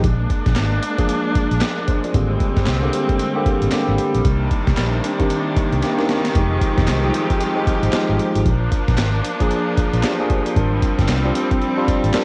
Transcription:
0.04 A#1 G#3 A#3 D4, kick, closed hi-hat
0.30 kick, closed hi-hat
0.46 A#1, kick, snare, closed hi-hat
0.55 G#1, snare, clap, closed hi-hat
0.83 closed hi-hat
0.98 F3 A#3 D4 G#4, kick, closed hi-hat
1.09 closed hi-hat
1.35 muted fingered electric bass stroke, kick, closed hi-hat
1.51 A#1, closed hi-hat
1.61 snare, clap, closed hi-hat
1.77 D4 A#4
1.88 C5, kick, closed hi-hat
2.04 F4 D5, closed hi-hat
2.14 G#1 D3 G3 A#3 C4 G4, kick, closed hi-hat
2.40 kick, closed hi-hat
2.57 G1, kick, snare, closed hi-hat
2.66 C2, snare, clap, closed hi-hat
2.82 D3 A#3 C4 G4
2.93 closed hi-hat
3.09 kick, closed hi-hat
3.19 closed hi-hat
3.35 D3 A#3 C4 G4
3.46 muted fingered electric bass stroke, kick, closed hi-hat
3.62 G#1, closed hi-hat
3.71 D3 A#3 C4 G4, muted fingered electric bass stroke, snare, clap, closed hi-hat
3.88 G#1
3.98 closed hi-hat
4.15 A#1, closed hi-hat
4.25 C2 C3 D#3 A#3 D4, kick, closed hi-hat
4.51 kick, closed hi-hat
4.67 C2, kick, snare, closed hi-hat
4.77 A#1, snare, clap, closed hi-hat
5.04 closed hi-hat
5.19 D#3 A#3 C4 G4, kick, closed hi-hat
5.30 closed hi-hat
5.57 muted fingered electric bass stroke, kick, closed hi-hat
5.73 C2, closed hi-hat
5.82 D#3 A#3 C4 G4, snare, closed hi-hat
5.98 D#3 A#3 C4 D4, snare
6.09 snare, closed hi-hat
6.25 snare, closed hi-hat
6.35 F1 F3 G#3 C4 D#4 G4, kick, closed hi-hat
6.61 kick, closed hi-hat
6.78 F1, kick, snare, closed hi-hat
6.87 C2, snare, clap, closed hi-hat
7.03 F3 G3 D#4 G4
7.10 G#3
7.14 closed hi-hat
7.30 kick, closed hi-hat
7.41 closed hi-hat
7.56 F3 G#3 D#4 G4
7.67 muted fingered electric bass stroke, kick, closed hi-hat
7.83 G#1, closed hi-hat
7.92 F3 G#3 D#4 G4, muted fingered electric bass stroke, snare, clap, closed hi-hat
8.09 G#1
8.19 closed hi-hat
8.35 G#1, closed hi-hat
8.45 A#1 F3 A#3 D4, kick, closed hi-hat
8.72 kick, closed hi-hat
8.88 A#1, kick, snare, closed hi-hat
8.97 G#1, snare, clap, closed hi-hat
9.24 closed hi-hat
9.40 F3 A#3 D4 G#4, kick, closed hi-hat
9.51 closed hi-hat
9.77 muted fingered electric bass stroke, kick, closed hi-hat
9.93 A#1, closed hi-hat
10.03 F3 A#3 D4 G4 D5, snare, clap, closed hi-hat
10.19 F3 A#3 D4 G#4
10.30 kick, closed hi-hat
10.46 closed hi-hat
10.56 G#1 G3 C4 D4 A#4, kick, closed hi-hat
10.82 kick, closed hi-hat
10.99 G1, kick, snare, closed hi-hat
11.08 C2, snare, clap, closed hi-hat
11.24 G3 C4 D4 F4
11.35 closed hi-hat
11.51 kick, closed hi-hat
11.62 closed hi-hat
11.77 G3 C4 D4 F4
11.88 muted fingered electric bass stroke, kick, closed hi-hat
12.04 G#1, closed hi-hat
12.13 G3 C4 D4 A#4, muted fingered electric bass stroke, snare, clap, closed hi-hat

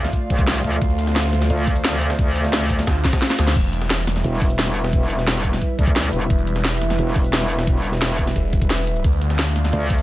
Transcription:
Already playing: D2 A3 F4 D5 F5
0.04 snare
0.13 kick, closed hi-hat, shaker
0.30 C2, kick, closed hi-hat, shaker
0.39 kick, closed hi-hat, shaker
0.47 snare, closed hi-hat
0.56 closed hi-hat
0.64 D2, closed hi-hat, shaker
0.73 shaker
0.82 D2 C5, kick, closed hi-hat, shaker
0.90 closed hi-hat
0.99 closed hi-hat, shaker
1.07 snare, closed hi-hat, shaker
1.16 snare, closed hi-hat, shaker
1.33 D2, snare, closed hi-hat
1.42 snare
1.50 D2, closed hi-hat, shaker
1.67 kick, closed hi-hat, open hi-hat
1.76 closed hi-hat, shaker
1.84 snare, closed hi-hat
1.93 snare, closed hi-hat
2.02 closed hi-hat, shaker
2.10 snare, shaker
2.19 kick, closed hi-hat, shaker
2.36 closed hi-hat, shaker
2.44 snare, closed hi-hat, shaker
2.53 snare, closed hi-hat, shaker
2.70 kick, closed hi-hat, shaker
2.79 snare
2.87 D2, kick, snare, closed hi-hat, shaker
3.04 kick, snare, closed hi-hat, shaker
3.13 kick, snare, closed hi-hat, shaker
3.22 snare, closed hi-hat
3.30 snare, closed hi-hat
3.39 D2, snare, closed hi-hat, shaker
3.47 snare, closed hi-hat, shaker
3.56 E1 G3 E4 B4 E5, kick, closed hi-hat, crash, shaker
3.64 closed hi-hat
3.73 closed hi-hat, shaker
3.82 snare, closed hi-hat, shaker
3.90 snare, closed hi-hat, shaker
4.07 E1, snare, closed hi-hat
4.16 snare
4.24 E1, closed hi-hat, shaker
4.42 kick, closed hi-hat, open hi-hat
4.50 closed hi-hat, shaker
4.59 snare, closed hi-hat
4.67 snare, closed hi-hat
4.76 closed hi-hat, shaker
4.84 snare, shaker
4.93 kick, closed hi-hat, shaker
5.10 closed hi-hat, shaker
5.19 snare, closed hi-hat, shaker
5.27 snare, closed hi-hat, shaker
5.44 kick, closed hi-hat
5.53 snare
5.62 kick, closed hi-hat, shaker
5.79 D2, kick, closed hi-hat, shaker
5.87 kick, closed hi-hat, shaker
5.96 snare, closed hi-hat
6.04 closed hi-hat
6.13 E1, closed hi-hat, shaker
6.22 shaker
6.30 E1, kick, closed hi-hat, shaker
6.39 closed hi-hat
6.47 closed hi-hat, shaker
6.56 snare, closed hi-hat, shaker
6.64 snare, closed hi-hat, shaker
6.82 E1, snare, closed hi-hat
6.90 snare
6.99 E1, closed hi-hat, shaker
7.16 kick, closed hi-hat, open hi-hat
7.24 closed hi-hat, shaker
7.33 snare, closed hi-hat
7.42 snare, closed hi-hat
7.50 closed hi-hat, shaker
7.59 snare, shaker
7.67 kick, closed hi-hat, shaker
7.84 closed hi-hat, shaker
7.93 snare, closed hi-hat, shaker
8.02 snare, closed hi-hat, shaker
8.19 kick, closed hi-hat
8.27 snare
8.36 E1, kick, closed hi-hat, shaker
8.53 kick, closed hi-hat, shaker
8.62 kick, closed hi-hat, shaker
8.70 E1, snare, closed hi-hat
8.79 closed hi-hat
8.87 closed hi-hat, shaker
8.96 shaker
9.04 D2 A3 F4 D5 F5, kick, closed hi-hat, shaker
9.13 closed hi-hat
9.22 closed hi-hat, shaker
9.30 snare, closed hi-hat, shaker
9.39 snare, closed hi-hat, shaker
9.56 D2, snare, closed hi-hat
9.64 snare
9.73 D2, closed hi-hat, shaker
9.90 kick, closed hi-hat, open hi-hat
9.99 closed hi-hat, shaker

